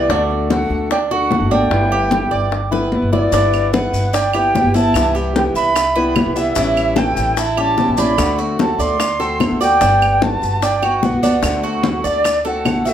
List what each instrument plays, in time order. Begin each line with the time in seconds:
Already playing: steel-string acoustic guitar G3 B3, flute D5
0.09 upright bass D2, steel-string acoustic guitar D3 A3 D4 F#4, cuban tres D4, high bongo, high conga
0.31 high conga
0.50 steel-string acoustic guitar D3 A3 D4 F#4, cuban tres A4, flute F#5, high bongo, high conga
0.70 upright bass D2, high bongo, high conga
0.91 cuban tres D4, flute G5, muted steel-string acoustic guitar stroke, high bongo, high conga
1.11 steel-string acoustic guitar A3 D4 F#4, cuban tres F#4, flute F#5, high bongo, high conga
1.31 steel-string acoustic guitar D3 A3 D4 F#4, high bongo, low bongo, high conga
1.40 upright bass G#1
1.51 steel-string acoustic guitar A3 D4 F#4, cuban tres D4, flute G5, high bongo, high conga
1.71 upright bass G1, steel-string acoustic guitar G3 B3 E4, high bongo, high conga
1.92 cuban tres G4, high conga
2.11 steel-string acoustic guitar B3 E4, high bongo, high conga
2.31 upright bass G1, cuban tres D5, high bongo, high conga
2.51 muted steel-string acoustic guitar stroke, high bongo, high conga
2.71 steel-string acoustic guitar B3 E4, cuban tres B4, high bongo, high conga
2.92 steel-string acoustic guitar G3 B3 E4, high conga
3.02 upright bass G1
3.12 steel-string acoustic guitar B3 E4, cuban tres D5, flute D5, low bongo, high conga
3.32 upright bass G1, steel-string acoustic guitar G3 B3 E4, cuban tres D4, high bongo, high conga, maracas
3.53 high conga, claves, maracas
3.73 steel-string acoustic guitar G3 B3 E4, cuban tres B4, flute F#5, high bongo, high conga, maracas
3.93 upright bass G1, high bongo, high conga, maracas
4.13 cuban tres D4, flute G5, muted steel-string acoustic guitar stroke, high bongo, high conga, maracas
4.33 steel-string acoustic guitar B3 E4, cuban tres G4, flute G5, high bongo, high conga, claves, maracas
4.55 steel-string acoustic guitar G3 B3 E4, high bongo, low bongo, high conga, maracas
4.64 upright bass G1
4.74 steel-string acoustic guitar B3 E4, cuban tres E4, flute A5, high bongo, high conga, maracas
4.94 upright bass C2, steel-string acoustic guitar C3 E3 G3 B3 E4, high bongo, claves, maracas
5.15 cuban tres G4, high conga, maracas
5.35 steel-string acoustic guitar E3 G3 B3 E4, flute G5, high bongo, high conga, maracas
5.54 upright bass C2, cuban tres E5, flute B5, high bongo, high conga, maracas
5.75 muted steel-string acoustic guitar stroke, high bongo, high conga, claves, maracas
5.95 steel-string acoustic guitar E3 G3 B3 E4, cuban tres B4, high bongo, high conga, maracas
6.16 steel-string acoustic guitar E3 G3 B3 E4, high bongo, low bongo, high conga, claves, maracas
6.26 upright bass C2
6.36 steel-string acoustic guitar E3 G3 B3 E4, cuban tres E5, flute E5, high bongo, high conga, maracas
6.55 upright bass A1, steel-string acoustic guitar E3 G3 C#4 E4, cuban tres E4, high bongo, high conga, maracas
6.76 high conga, claves, maracas
6.96 steel-string acoustic guitar E3 G3 C#4 E4, cuban tres A4, flute G5, high bongo, high conga, maracas
7.16 upright bass A1, high bongo, high conga, maracas
7.37 cuban tres E4, flute A5, muted steel-string acoustic guitar stroke, high bongo, high conga, maracas
7.57 steel-string acoustic guitar G3 C#4 E4, cuban tres G4, flute A5, high bongo, high conga, claves, maracas
7.77 steel-string acoustic guitar E3 G3 C#4 E4, high bongo, low bongo, high conga, maracas
7.88 upright bass A1
7.97 steel-string acoustic guitar G3 C#4 E4, cuban tres D4, flute B5, high bongo, high conga, maracas
8.17 upright bass D2, steel-string acoustic guitar D3 A3 C4 F#4, high bongo, high conga, claves, maracas
8.38 cuban tres F#4, high conga, maracas
8.59 steel-string acoustic guitar D3 A3 C4 F#4, flute A5, high bongo, high conga, maracas
8.79 upright bass D2, cuban tres D5, flute C6, high bongo, high conga, maracas
9.00 muted steel-string acoustic guitar stroke, high bongo, high conga, claves, maracas
9.19 steel-string acoustic guitar A3 C4 F#4, cuban tres A4, high bongo, high conga, maracas
9.40 steel-string acoustic guitar D3 A3 C4 F#4, high bongo, low bongo, high conga, claves, maracas
9.51 upright bass D2
9.61 steel-string acoustic guitar A3 C4 F#4, cuban tres D5, flute G5, high bongo, high conga, maracas
9.81 upright bass G1, steel-string acoustic guitar G3 B3, cuban tres D4, high bongo, high conga, maracas
10.02 high conga, claves, maracas
10.21 steel-string acoustic guitar G3 B3 F#4, flute A5, high bongo, high conga, maracas
10.42 upright bass G1, high bongo, high conga, maracas
10.62 cuban tres D4, flute G5, muted steel-string acoustic guitar stroke, high bongo, high conga, maracas
10.82 steel-string acoustic guitar B3 F#4, cuban tres F#4, high bongo, high conga, claves, maracas
11.03 steel-string acoustic guitar G3 B3 F#4, flute F#5, high bongo, low bongo, high conga, maracas
11.13 upright bass C#2
11.23 steel-string acoustic guitar B3 F#4, cuban tres D4, high bongo, high conga, maracas
11.43 upright bass D2, steel-string acoustic guitar D3 A3 C4 F#4, flute F#5, high bongo, high conga, claves, maracas
11.63 cuban tres F#4, high conga, maracas
11.84 steel-string acoustic guitar D3 A3 C4 F#4, high bongo, high conga, maracas
12.04 upright bass D2, cuban tres D5, flute D5, high bongo, high conga, maracas
12.24 muted steel-string acoustic guitar stroke, high bongo, high conga, claves, maracas
12.45 steel-string acoustic guitar A3 C4 F#4, cuban tres A4, flute F#5, high bongo, high conga, maracas
12.65 steel-string acoustic guitar D3 A3 C4 F#4, high bongo, low bongo, high conga, claves, maracas
12.75 upright bass A#1
12.85 steel-string acoustic guitar A3 C4 F#4, cuban tres E5, flute E5, high bongo, high conga, maracas